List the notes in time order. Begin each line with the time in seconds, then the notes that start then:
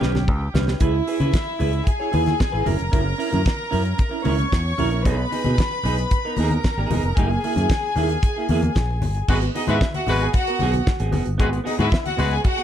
Already playing: G4 G5
0.00 B1 C#4 G4 B4, snare, high conga
0.14 muted clean electric guitar stroke, snare, high conga
0.28 C#2, muted clean electric guitar stroke, kick, muted conga
0.41 muted clean electric guitar stroke
0.54 C2 C#4 G4 B4, snare, muted conga, high conga, low conga
0.68 C#4 G4 B4, snare
0.80 C#2 E4 G#4 B4 E5, kick, closed hi-hat, muted conga, low conga
0.94 muted clean electric guitar stroke
1.07 E4 G#4 B4, open hi-hat
1.20 C#3 E4 G#4 B4, closed hi-hat, high conga
1.33 muted clean electric guitar stroke, kick, snare, closed hi-hat, muted conga
1.45 muted clean electric guitar stroke
1.59 C#2 E4 G#4 B4, open hi-hat, muted conga, low conga
1.73 muted clean electric guitar stroke, closed hi-hat
1.86 G#4 G#5, muted clean electric guitar stroke, kick, closed hi-hat
2.00 E4 G#4 C#5
2.12 D#2 E4 G#4 B4, open hi-hat, muted conga, high conga
2.25 muted clean electric guitar stroke, snare, closed hi-hat, high conga
2.39 muted clean electric guitar stroke, kick, snare, closed hi-hat, muted conga
2.52 G#1 E4 G#4 B4
2.65 F#1 C#4 E4 A#4 A#5, open hi-hat, muted conga, high conga, low conga
2.78 F1, muted clean electric guitar stroke, closed hi-hat
2.92 F#1 C#4 E4 A#4, kick, closed hi-hat, muted conga, low conga
3.05 muted clean electric guitar stroke
3.18 C#4 E4 A#4, open hi-hat
3.31 F#2 C#4 E4 A#4, closed hi-hat, high conga
3.46 kick, snare, closed hi-hat, muted conga
3.57 muted clean electric guitar stroke
3.71 F#2 C#4 E4 A#4, open hi-hat, low conga
3.85 muted clean electric guitar stroke, closed hi-hat
3.98 muted clean electric guitar stroke, kick, closed hi-hat, muted conga
4.10 C#4 E4 A#4
4.24 C#2 C#4 E4 A#4 C#5 C#6, open hi-hat, muted conga, high conga
4.38 muted clean electric guitar stroke, closed hi-hat, high conga
4.51 E2, muted clean electric guitar stroke, kick, snare, closed hi-hat
4.64 muted clean electric guitar stroke
4.78 A#1 C#4 E4 A#4, open hi-hat, muted conga, high conga, low conga
4.91 C#4 E4 A#4, closed hi-hat
5.04 B1 B3 D#4 G#4 B4 B5, kick, closed hi-hat, muted conga, low conga
5.18 muted clean electric guitar stroke
5.31 B3 D#4 G#4, open hi-hat, muted conga
5.44 B2 B3 D#4 G#4, closed hi-hat, high conga
5.57 muted clean electric guitar stroke, kick, snare, closed hi-hat, muted conga
5.71 muted clean electric guitar stroke
5.83 B1 B3 D#4 G#4, open hi-hat, muted conga, low conga
5.98 muted clean electric guitar stroke, closed hi-hat
6.11 muted clean electric guitar stroke, kick, closed hi-hat, muted conga
6.25 B3 D#4 A#4
6.37 D#2 B3 D#4 A#4 A#5, open hi-hat, muted conga, high conga
6.41 G#4
6.50 muted clean electric guitar stroke, closed hi-hat, high conga
6.63 muted clean electric guitar stroke, kick, snare, closed hi-hat, muted conga
6.77 G#1 B3 D#4 G#4
6.90 E1 B3 D#4 G#4, open hi-hat, muted conga, high conga, low conga
7.03 F1, muted clean electric guitar stroke, closed hi-hat
7.17 F#1 A#3 E4 G#4 G#5, kick, closed hi-hat, low conga
7.31 muted clean electric guitar stroke
7.44 A#3 E4 G#4, open hi-hat, muted conga
7.56 F#2 A#3 E4 G#4, closed hi-hat, high conga
7.69 kick, snare, closed hi-hat
7.83 muted clean electric guitar stroke
7.96 D#2 A#3 E4 G#4, open hi-hat, low conga
8.09 muted clean electric guitar stroke, closed hi-hat
8.23 muted clean electric guitar stroke, kick, closed hi-hat
8.37 A#3 E4 G#4
8.49 E2 A#3 E4 G#4, open hi-hat, high conga
8.62 muted clean electric guitar stroke, closed hi-hat, high conga
8.75 A#1, muted clean electric guitar stroke, kick, snare, closed hi-hat, muted conga
8.91 muted clean electric guitar stroke
9.02 G1, open hi-hat, high conga, low conga
9.15 muted clean electric guitar stroke, closed hi-hat
9.28 G#1 G#3 B3 F#4 G#4 B4, kick, crash, low conga
9.42 muted clean electric guitar stroke, closed hi-hat
9.55 B3 D#4 F#4 G#4 D#5, open hi-hat, muted conga
9.67 G#2 G#3 B3 E4 F#4 G#4 B4 E5, closed hi-hat, high conga
9.81 muted clean electric guitar stroke, kick, snare
9.94 F#4 F#5, muted clean electric guitar stroke, closed hi-hat, high conga
10.07 G#1 G#3 B3 F#4 G#4 B4, open hi-hat, low conga
10.20 G#4 G#5, muted clean electric guitar stroke, closed hi-hat
10.33 F#4 F#5, muted clean electric guitar stroke, kick, closed hi-hat, muted conga
10.47 B3 F#4 A#4, closed hi-hat
10.59 B1 B3 F#4 G#4, open hi-hat, high conga
10.73 muted clean electric guitar stroke, closed hi-hat, high conga
10.87 muted clean electric guitar stroke, kick, snare
11.00 G#1 B3 F#4 G#4, closed hi-hat
11.12 F#1 B3 F#4 G#4, open hi-hat, muted conga, high conga, low conga
11.26 G1, muted clean electric guitar stroke, closed hi-hat
11.38 G#1 G#3 B3 F#4 G#4 B4, kick, closed hi-hat, muted conga, low conga
11.52 muted clean electric guitar stroke, closed hi-hat
11.64 B3 D#4 F#4 G#4 D#5, open hi-hat, muted conga
11.78 G#2 G#3 B3 E4 F#4 G#4 B4 E5, closed hi-hat, high conga
11.91 muted clean electric guitar stroke, kick, snare
12.04 F#4 F#5, muted clean electric guitar stroke, closed hi-hat, high conga
12.17 C#2 G#3 B3 F#4 G#4 B4, open hi-hat, low conga
12.31 G#4 G#5, muted clean electric guitar stroke, closed hi-hat
12.44 F#4 F#5, muted clean electric guitar stroke, kick, closed hi-hat, muted conga
12.57 B3 F#4 G#4, closed hi-hat